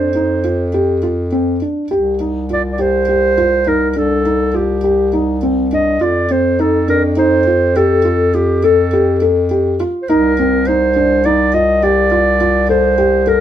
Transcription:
0.00 1.75 F2 medium
0.00 0.74 C5 medium
0.15 0.38 D#4 medium
0.44 0.67 F4 medium
0.74 0.97 G4 medium
1.03 1.26 F4 medium
1.32 1.55 C4 medium
1.62 1.84 D4 medium
1.91 3.93 C2 medium
1.91 2.14 G4 medium
2.20 2.43 D#4 medium
2.50 2.73 F4 medium
2.50 2.63 D5 medium
2.72 2.83 D5 medium
2.79 3.02 G4 medium
2.79 3.70 C5 medium
3.09 3.31 G4 medium
3.38 3.60 F4 medium
3.67 3.89 D#4 medium
3.67 3.91 A#4 medium
3.91 3.99 A#4 medium
3.96 5.97 C2 medium
3.96 4.19 D4 medium
3.96 4.57 A4 medium
4.25 4.48 D#4 medium
4.54 4.77 F4 medium
4.54 5.21 G4 medium
4.84 5.07 G4 medium
5.13 5.36 D#4 medium
5.43 5.65 C4 medium
5.73 5.95 D4 medium
5.73 6.04 D#5 medium
6.01 9.93 F2 medium
6.01 6.23 F4 medium
6.01 6.33 D5 medium
6.31 6.53 C4 medium
6.31 6.62 C5 medium
6.59 6.82 D#4 medium
6.59 6.89 A4 medium
6.88 7.11 D4 medium
6.88 7.02 A#4 medium
7.17 7.40 D#4 medium
7.17 7.78 C5 medium
7.47 7.69 F4 medium
7.76 7.99 G4 medium
7.76 8.36 A4 medium
8.05 8.27 F4 medium
8.34 8.57 F4 medium
8.34 8.66 G4 medium
8.64 8.86 A4 medium
8.64 9.30 A4 medium
8.93 9.15 G4 medium
9.22 9.44 A4 medium
9.51 9.73 G4 medium
9.80 10.02 F4 medium
10.02 10.11 C5 medium
10.09 13.40 C2 medium
10.09 10.32 D#4 medium
10.09 10.69 A#4 medium
10.39 10.61 C4 medium
10.67 10.90 D#4 medium
10.67 11.27 C5 medium
10.96 11.18 D4 medium
11.25 11.48 D#4 medium
11.25 11.56 D5 medium
11.54 11.76 F4 medium
11.54 11.85 D#5 medium
11.83 12.05 G4 medium
11.83 12.69 D5 medium
12.11 12.34 F4 medium
12.41 12.63 F4 medium
12.69 12.92 A4 medium
12.69 13.30 C5 medium
12.98 13.21 G4 medium
13.27 13.40 A4 medium
13.27 13.40 A#4 medium

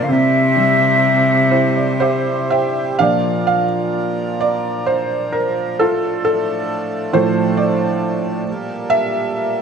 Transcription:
0.00 0.11 D4 medium
0.00 0.10 F4 medium
0.00 0.10 A#4 soft
0.00 2.97 C5 medium
0.00 0.13 F5 medium
0.04 0.12 D3 soft
0.08 2.96 C3 medium
0.08 2.52 C3 medium
0.08 2.97 G3 medium
0.08 2.97 E4 medium
0.08 2.53 E5 medium
0.57 2.48 G3 soft
1.51 2.96 E4 soft
1.51 1.74 C5 medium
1.76 2.00 D5 medium
2.00 2.97 G4 soft
2.00 2.51 C5 medium
2.00 2.48 E5 medium
2.50 2.99 C5 soft
2.50 2.96 E5 medium
2.50 2.97 G5 medium
2.99 3.63 A#2 soft
2.99 3.63 F3 soft
2.99 8.44 F3 medium
2.99 8.44 D4 medium
2.99 3.64 D4 soft
2.99 5.78 A#4 medium
2.99 4.38 D5 medium
2.99 3.45 F5 medium
3.47 4.44 F5 medium
4.40 4.89 D5 medium
4.86 5.35 C5 medium
5.32 5.81 A#4 medium
5.79 8.45 A2 medium
5.79 7.11 F4 medium
5.79 6.23 A4 medium
5.79 9.62 A4 medium
6.25 7.17 A4 medium
7.13 8.43 A2 medium
7.13 8.43 F3 soft
7.13 8.43 A3 medium
7.13 7.60 C5 medium
7.57 8.21 D5 medium
8.49 9.62 A#2 medium
8.49 9.62 G3 medium
8.49 9.62 A#3 medium
8.90 9.62 E5 medium

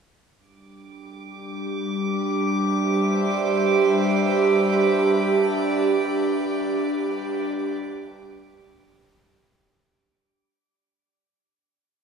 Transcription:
0.37 4.99 G3 medium
0.37 9.73 G3 medium
0.37 9.73 D4 medium
0.37 9.63 D6 medium
1.02 9.60 G4 medium
1.54 9.61 B4 medium
2.48 5.00 C5 medium
2.48 6.85 E5 medium
5.00 9.61 D4 medium

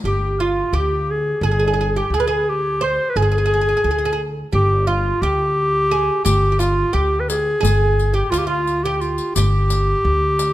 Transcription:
0.04 0.61 G1 medium
0.04 0.40 G4 medium
0.04 0.42 G4 medium
0.40 0.75 F4 medium
0.40 0.77 F4 medium
0.72 1.30 D2 medium
0.72 1.43 G4 medium
0.72 1.12 G4 medium
1.11 1.44 G#4 medium
1.41 1.99 G1 medium
1.41 1.50 G#4 medium
1.41 1.99 G#4 medium
1.51 1.58 G#4 soft
1.59 1.66 G#4 medium
1.68 1.72 G#4 soft
1.74 1.80 G#4 medium
1.81 1.88 G#4 medium
1.96 2.13 G4 medium
1.96 2.16 G4 medium
2.10 2.96 D2 medium
2.10 2.19 G#4 medium
2.15 2.50 G#4 medium
2.20 2.26 B4 medium
2.27 2.81 G#4 medium
2.49 2.85 G4 medium
2.81 3.16 C5 medium
2.81 3.11 C5 medium
3.09 3.19 B4 medium
3.16 3.73 G1 medium
3.16 3.21 G#4 medium
3.16 4.27 G#4 medium
3.22 3.29 G#4 medium
3.32 3.37 G#4 medium
3.38 3.44 G#4 soft
3.46 3.52 G#4 medium
3.54 3.60 G#4 soft
3.61 3.67 G#4 medium
3.69 3.75 G#4 soft
3.77 3.83 G#4 medium
3.84 4.41 D2 medium
3.84 3.90 G#4 soft
3.91 3.97 G#4 medium
3.98 4.04 G#4 soft
4.05 4.11 G#4 medium
4.13 4.19 G#4 medium
4.52 5.10 G1 medium
4.52 4.87 G4 medium
4.52 4.89 G4 medium
4.87 5.23 F4 medium
5.22 6.08 D2 medium
5.22 6.24 G4 loud
5.22 5.91 G4 medium
5.91 6.24 G#4 medium
6.25 6.83 G1 medium
6.25 6.51 G4 medium
6.25 6.61 G4 medium
6.25 riq medium
6.52 6.59 G4 soft
6.59 6.93 F4 medium
6.59 6.96 F4 medium
6.59 riq soft
6.93 7.51 D2 medium
6.93 7.60 G4 medium
6.93 7.21 G4 medium
7.20 7.30 B4 medium
7.29 7.62 G#4 medium
7.29 riq medium
7.61 8.20 G1 loud
7.61 8.10 G#4 medium
7.61 8.16 G#4 medium
7.61 riq medium
8.00 riq soft
8.14 8.32 G4 medium
8.30 9.18 D2 medium
8.30 8.40 F4 medium
8.30 8.46 F4 medium
8.30 riq soft
8.38 8.48 G4 medium
8.47 8.85 F4 medium
8.67 riq soft
8.83 9.02 G4 medium
8.83 9.36 G4 medium
9.01 9.35 F4 medium
9.01 riq soft
9.18 riq soft
9.35 9.93 G1 medium
9.35 10.53 G4 medium
9.35 riq medium
9.70 riq soft
10.05 10.53 D2 medium
10.39 riq soft

